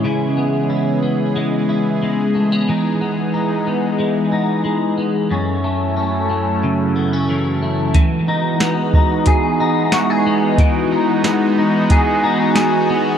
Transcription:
<<
  \new Staff \with { instrumentName = "Analog synth pad" } { \time 4/4 \key e \major \tempo 4 = 91 << { gis'1~ | gis'1 | a'1 | fis'1~ |
fis'1 | } \\ { <e gis b cis'>1 | <e gis b dis'>1 | <fis a cis' e'>1 | <e gis b dis'>1~ |
<e gis b dis'>1 | } >> }
  \new Staff \with { instrumentName = "Clean electric guitar" } { \time 4/4 \key e \major <cis e'>8 b8 e'8 b8 gis8 e'8 gis8 a16 b16 | <e dis'>8 b8 dis'8 b8 gis8 dis'8 gis8 b8 | <fis, cis'>8 a8 cis'8 a8 cis8 b16 cis'16 e8 a8 | e8 dis'8 b8 dis'8 gis'8 dis'8 fis'16 gis'16 b8 |
e8 dis'8 b8 dis'8 gis'8 dis'8 gis'8 b8 | }
  \new DrumStaff \with { instrumentName = "Drums" } \drummode { \time 4/4 r4 r4 r4 r4 | r4 r4 r4 r4 | r4 r4 r4 r4 | <hh bd>4 <hh sn tamb>8 bd8 <hh bd>4 <hh sn tamb>4 |
<hh bd>4 <hh sn tamb>4 <hh bd>4 <hh sn tamb>4 | }
>>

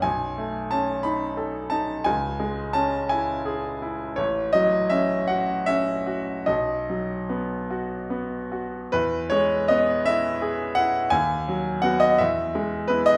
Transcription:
\new Staff \with { instrumentName = "Grand piano" } { \time 6/8 \key e \major \tempo 4. = 56 << { gis''4 a''8 b''4 a''8 | gis''4 a''8 gis''8 r4 | cis''8 dis''8 e''8 fis''8 e''4 | dis''4. r4. |
b'8 cis''8 dis''8 e''4 fis''8 | gis''4 fis''16 dis''16 e''4 b'16 dis''16 | } \\ { b,,8 a8 cis'8 dis'8 a'8 dis'8 | cis,8 gis8 cis'8 e'8 gis'8 e'8 | a,,8 fis8 cis'8 fis'8 cis'8 fis'8 | b,,8 fis8 b8 fis'8 b8 fis'8 |
e,8 gis8 b8 e'8 gis'8 e'8 | dis,8 fis8 <b fis'>8 e,8 gis8 <b e'>8 | } >> }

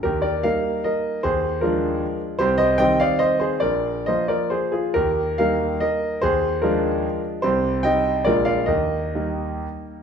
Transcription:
<<
  \new Staff \with { instrumentName = "Grand piano" } { \time 3/4 \key ees \major \tempo 4 = 144 <g' bes'>8 <bes' d''>8 <bes' f''>4 <bes' ees''>4 | <aes' c''>4 <f' bes'>4. r8 | <g' c''>8 <c'' ees''>8 <ees'' g''>8 <d'' f''>8 <c'' ees''>8 <aes' c''>8 | <bes' d''>4 <c'' ees''>8 <bes' d''>8 <aes' c''>8 <f' aes'>8 |
<g' bes'>4 <bes' f''>4 <bes' ees''>4 | <aes' c''>4 <f' bes'>4. r8 | <g' c''>4 <ees'' g''>4 <bes' d''>8 <d'' f''>8 | <bes' ees''>2 r4 | }
  \new Staff \with { instrumentName = "Grand piano" } { \clef bass \time 3/4 \key ees \major ees,4 <g bes ees'>2 | ees,4 <f aes d'>2 | c,4 <ees g c'>2 | bes,,4 <f bes f'>2 |
ees,4 <g bes ees'>2 | ees,4 <f aes d'>2 | c,4 <g ees'>4 <bes,, aes bes f'>4 | ees,4 <g bes ees'>2 | }
>>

